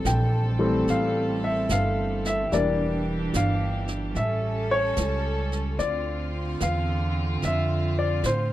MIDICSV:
0, 0, Header, 1, 5, 480
1, 0, Start_track
1, 0, Tempo, 819672
1, 1472, Time_signature, 4, 2, 24, 8
1, 4994, End_track
2, 0, Start_track
2, 0, Title_t, "Grand piano"
2, 0, Program_c, 0, 0
2, 0, Control_c, 0, 64, 127
2, 0, Note_on_c, 0, 52, 54
2, 0, Note_on_c, 0, 55, 48
2, 0, Note_on_c, 0, 57, 46
2, 0, Note_on_c, 0, 60, 60
2, 0, Note_on_c, 0, 81, 82
2, 39, Note_on_c, 0, 79, 72
2, 282, Note_off_c, 0, 52, 0
2, 286, Note_off_c, 0, 55, 0
2, 287, Note_off_c, 0, 57, 0
2, 287, Note_off_c, 0, 60, 0
2, 344, Note_on_c, 0, 52, 57
2, 346, Note_on_c, 0, 55, 55
2, 348, Note_on_c, 0, 57, 56
2, 355, Note_on_c, 0, 60, 65
2, 491, Note_off_c, 0, 79, 0
2, 527, Note_on_c, 0, 77, 72
2, 817, Note_off_c, 0, 77, 0
2, 844, Note_on_c, 0, 76, 76
2, 957, Note_off_c, 0, 52, 0
2, 957, Note_off_c, 0, 55, 0
2, 959, Note_off_c, 0, 57, 0
2, 962, Note_off_c, 0, 60, 0
2, 1002, Note_off_c, 0, 76, 0
2, 1007, Note_on_c, 0, 77, 78
2, 1328, Note_on_c, 0, 76, 76
2, 1330, Note_off_c, 0, 77, 0
2, 1474, Note_on_c, 0, 52, 53
2, 1476, Note_on_c, 0, 55, 51
2, 1480, Control_c, 0, 64, 0
2, 1480, Note_on_c, 0, 58, 47
2, 1481, Note_on_c, 0, 62, 57
2, 1483, Note_off_c, 0, 81, 0
2, 1484, Note_off_c, 0, 76, 0
2, 1486, Note_on_c, 0, 74, 79
2, 1583, Control_c, 0, 64, 127
2, 1761, Note_off_c, 0, 52, 0
2, 1762, Note_off_c, 0, 55, 0
2, 1764, Note_off_c, 0, 58, 0
2, 1765, Note_off_c, 0, 62, 0
2, 1935, Note_off_c, 0, 74, 0
2, 1970, Note_on_c, 0, 77, 70
2, 2437, Control_c, 0, 64, 0
2, 2440, Note_on_c, 0, 76, 74
2, 2454, Note_off_c, 0, 77, 0
2, 2760, Note_on_c, 0, 73, 91
2, 2764, Note_off_c, 0, 76, 0
2, 3391, Note_on_c, 0, 74, 80
2, 3412, Note_off_c, 0, 73, 0
2, 3878, Note_on_c, 0, 77, 72
2, 3884, Note_off_c, 0, 74, 0
2, 4361, Note_on_c, 0, 76, 76
2, 4366, Note_off_c, 0, 77, 0
2, 4652, Note_off_c, 0, 76, 0
2, 4677, Note_on_c, 0, 74, 74
2, 4820, Note_off_c, 0, 74, 0
2, 4836, Note_on_c, 0, 72, 69
2, 4994, Note_off_c, 0, 72, 0
2, 4994, End_track
3, 0, Start_track
3, 0, Title_t, "String section"
3, 0, Program_c, 1, 48
3, 0, Note_on_c, 1, 55, 56
3, 0, Note_on_c, 1, 60, 55
3, 0, Note_on_c, 1, 69, 67
3, 1452, Note_off_c, 1, 69, 0
3, 1453, Note_off_c, 1, 55, 0
3, 1453, Note_off_c, 1, 60, 0
3, 1477, Note_on_c, 1, 67, 64
3, 1482, Note_on_c, 1, 52, 63
3, 1482, Note_on_c, 1, 62, 55
3, 2423, Note_off_c, 1, 67, 0
3, 2426, Note_off_c, 1, 52, 0
3, 2426, Note_off_c, 1, 62, 0
3, 2428, Note_on_c, 1, 55, 60
3, 2429, Note_on_c, 1, 61, 57
3, 2429, Note_on_c, 1, 69, 69
3, 3377, Note_off_c, 1, 55, 0
3, 3377, Note_off_c, 1, 61, 0
3, 3377, Note_off_c, 1, 69, 0
3, 3379, Note_on_c, 1, 50, 66
3, 3381, Note_on_c, 1, 65, 73
3, 3383, Note_on_c, 1, 60, 55
3, 4994, Note_off_c, 1, 50, 0
3, 4994, Note_off_c, 1, 60, 0
3, 4994, Note_off_c, 1, 65, 0
3, 4994, End_track
4, 0, Start_track
4, 0, Title_t, "Upright bass"
4, 0, Program_c, 2, 32
4, 25, Note_on_c, 2, 34, 70
4, 494, Note_off_c, 2, 34, 0
4, 510, Note_on_c, 2, 33, 62
4, 977, Note_off_c, 2, 33, 0
4, 994, Note_on_c, 2, 31, 77
4, 1460, Note_off_c, 2, 31, 0
4, 1476, Note_on_c, 2, 28, 66
4, 1939, Note_off_c, 2, 28, 0
4, 1952, Note_on_c, 2, 31, 77
4, 2416, Note_off_c, 2, 31, 0
4, 2433, Note_on_c, 2, 33, 71
4, 2896, Note_off_c, 2, 33, 0
4, 2910, Note_on_c, 2, 37, 76
4, 3374, Note_off_c, 2, 37, 0
4, 3389, Note_on_c, 2, 38, 69
4, 3854, Note_off_c, 2, 38, 0
4, 3870, Note_on_c, 2, 40, 82
4, 4334, Note_off_c, 2, 40, 0
4, 4350, Note_on_c, 2, 41, 72
4, 4812, Note_off_c, 2, 41, 0
4, 4822, Note_on_c, 2, 45, 74
4, 4994, Note_off_c, 2, 45, 0
4, 4994, End_track
5, 0, Start_track
5, 0, Title_t, "Drums"
5, 29, Note_on_c, 9, 38, 49
5, 29, Note_on_c, 9, 44, 49
5, 87, Note_off_c, 9, 38, 0
5, 87, Note_off_c, 9, 44, 0
5, 512, Note_on_c, 9, 25, 40
5, 512, Note_on_c, 9, 38, 36
5, 570, Note_off_c, 9, 38, 0
5, 990, Note_on_c, 9, 38, 49
5, 990, Note_on_c, 9, 44, 47
5, 1049, Note_off_c, 9, 38, 0
5, 1049, Note_off_c, 9, 44, 0
5, 1315, Note_on_c, 9, 38, 30
5, 1373, Note_off_c, 9, 38, 0
5, 1474, Note_off_c, 9, 25, 0
5, 1474, Note_on_c, 9, 25, 39
5, 1474, Note_on_c, 9, 38, 36
5, 1533, Note_off_c, 9, 38, 0
5, 1954, Note_on_c, 9, 38, 49
5, 1954, Note_on_c, 9, 44, 53
5, 2013, Note_off_c, 9, 38, 0
5, 2013, Note_off_c, 9, 44, 0
5, 2269, Note_on_c, 9, 38, 29
5, 2327, Note_off_c, 9, 38, 0
5, 2429, Note_off_c, 9, 25, 0
5, 2429, Note_on_c, 9, 25, 45
5, 2429, Note_on_c, 9, 38, 36
5, 2488, Note_off_c, 9, 38, 0
5, 2907, Note_on_c, 9, 38, 49
5, 2907, Note_on_c, 9, 44, 57
5, 2966, Note_off_c, 9, 38, 0
5, 2966, Note_off_c, 9, 44, 0
5, 3231, Note_on_c, 9, 38, 33
5, 3289, Note_off_c, 9, 38, 0
5, 3388, Note_off_c, 9, 25, 0
5, 3388, Note_on_c, 9, 25, 44
5, 3388, Note_on_c, 9, 38, 35
5, 3447, Note_off_c, 9, 38, 0
5, 3867, Note_on_c, 9, 38, 50
5, 3867, Note_on_c, 9, 44, 41
5, 3925, Note_off_c, 9, 38, 0
5, 3925, Note_off_c, 9, 44, 0
5, 4345, Note_off_c, 9, 25, 0
5, 4345, Note_on_c, 9, 25, 40
5, 4345, Note_on_c, 9, 38, 37
5, 4404, Note_off_c, 9, 38, 0
5, 4822, Note_on_c, 9, 38, 49
5, 4822, Note_on_c, 9, 44, 46
5, 4881, Note_off_c, 9, 38, 0
5, 4881, Note_off_c, 9, 44, 0
5, 4994, Note_off_c, 9, 25, 0
5, 4994, End_track
0, 0, End_of_file